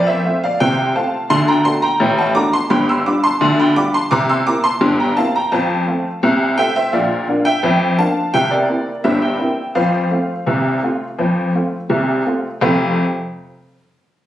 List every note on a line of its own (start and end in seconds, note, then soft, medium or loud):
0.00 0.19 F2 medium
0.00 0.19 F3 medium
0.07 0.40 C5 medium
0.07 0.40 E5 loud
0.25 0.44 A3 medium
0.25 0.44 C4 medium
0.25 0.45 F4 medium
0.44 0.60 D5 medium
0.44 0.60 F5 loud
0.60 0.90 C2 medium
0.60 0.90 C3 loud
0.60 0.93 C5 medium
0.60 0.93 G5 loud
0.96 1.15 A3 medium
0.96 1.15 C4 medium
0.96 1.15 F4 medium
0.96 1.28 F5 medium
0.96 1.23 A5 loud
1.30 1.60 D2 loud
1.30 1.60 D3 loud
1.30 1.47 A5 medium
1.30 1.47 C6 loud
1.48 1.64 G5 medium
1.48 1.65 A#5 loud
1.65 1.84 A3 medium
1.65 1.84 D4 medium
1.65 1.85 F#4 medium
1.65 1.82 A5 medium
1.65 1.82 C6 loud
1.82 2.15 G5 medium
1.82 2.10 A#5 loud
2.00 2.30 A1 loud
2.00 2.30 A2 loud
2.18 2.35 F#5 medium
2.18 2.35 A5 loud
2.35 2.54 A3 medium
2.35 2.55 D4 medium
2.35 2.55 F#4 medium
2.35 2.52 A#5 medium
2.35 2.52 D6 loud
2.53 2.70 A5 medium
2.53 2.70 C6 loud
2.70 3.00 G1 loud
2.70 3.00 G2 loud
2.70 2.87 G5 medium
2.70 2.87 B5 loud
2.89 3.05 C6 medium
2.89 3.06 E6 loud
3.06 3.25 G3 medium
3.06 3.26 D4 medium
3.06 3.26 F4 medium
3.06 3.23 B5 medium
3.06 3.23 D6 loud
3.24 3.57 A5 medium
3.24 3.57 C6 loud
3.41 3.70 D2 loud
3.41 3.71 D3 loud
3.60 3.76 G5 medium
3.60 3.76 B5 loud
3.76 3.95 G3 medium
3.76 3.96 D4 medium
3.76 3.96 F4 medium
3.76 3.93 B5 loud
3.76 3.93 D6 loud
3.94 4.11 A5 medium
3.94 4.11 C6 loud
4.11 4.41 C2 loud
4.11 4.41 C3 loud
4.11 4.28 A#5 loud
4.11 4.28 D6 loud
4.29 4.46 C6 medium
4.29 4.46 E6 loud
4.47 4.66 A#3 medium
4.47 4.66 C4 medium
4.47 4.66 E4 medium
4.47 4.63 A#5 medium
4.47 4.64 D6 loud
4.64 4.97 A5 medium
4.64 4.92 C6 loud
4.81 5.11 G1 loud
4.81 5.11 G2 loud
5.00 5.16 G5 medium
5.00 5.17 A#5 loud
5.17 5.36 A#3 medium
5.17 5.36 C4 medium
5.17 5.37 E4 medium
5.17 5.34 F5 medium
5.17 5.34 A5 loud
5.36 5.52 G5 medium
5.36 5.53 A#5 loud
5.52 5.82 F2 loud
5.52 5.82 F3 loud
5.52 6.19 F5 medium
5.52 6.19 A5 loud
5.88 6.07 A3 medium
5.88 6.07 C4 medium
5.88 6.07 F4 medium
6.23 6.53 C2 loud
6.23 6.53 C3 loud
6.58 6.77 A3 medium
6.58 6.77 C4 medium
6.58 6.78 F4 medium
6.58 6.75 E5 loud
6.58 6.75 G5 loud
6.76 6.93 C5 medium
6.76 6.93 E5 loud
6.93 7.23 A#1 medium
6.93 7.23 A#2 loud
6.93 7.43 D5 medium
6.93 7.43 F5 medium
7.28 7.48 A#3 medium
7.28 7.48 D4 medium
7.28 7.49 F4 medium
7.45 7.95 E5 medium
7.45 7.96 G5 loud
7.63 7.93 F2 loud
7.63 7.93 F3 loud
7.99 8.18 A#3 medium
7.99 8.19 D4 medium
7.99 8.19 F4 medium
7.99 8.32 F5 medium
7.99 8.32 A5 loud
8.34 8.64 C2 medium
8.34 8.64 C3 medium
8.34 8.51 E5 medium
8.34 8.52 G5 loud
8.51 9.02 A#4 medium
8.51 8.94 D5 medium
8.69 8.89 A#3 medium
8.69 8.89 C4 medium
8.69 8.89 E4 medium
9.04 9.35 G1 medium
9.04 9.35 G2 medium
9.04 9.22 C5 medium
9.04 9.22 E5 medium
9.22 9.73 E5 medium
9.22 9.65 G5 medium
9.40 9.60 A#3 soft
9.40 9.60 C4 medium
9.40 9.60 E4 medium
9.75 10.06 F2 medium
9.75 10.06 F3 medium
9.75 12.22 C5 medium
9.75 11.75 F5 medium
10.11 10.31 A3 medium
10.11 10.31 C4 medium
10.11 10.32 F4 medium
10.47 10.78 C2 medium
10.47 10.77 C3 medium
10.83 11.03 A3 medium
10.83 11.03 C4 medium
10.83 11.03 F4 medium
11.19 11.49 F2 medium
11.19 11.49 F3 medium
11.55 11.75 A3 soft
11.55 11.75 C4 soft
11.55 11.75 F4 soft
11.90 12.20 C2 medium
11.90 12.20 C3 medium
12.26 12.46 A3 medium
12.26 12.46 C4 medium
12.26 12.46 F4 medium
12.61 13.01 F2 loud
12.61 13.01 C3 loud
12.61 13.01 A3 medium
12.61 13.01 C4 loud
12.61 13.01 F4 medium
12.61 13.02 A4 medium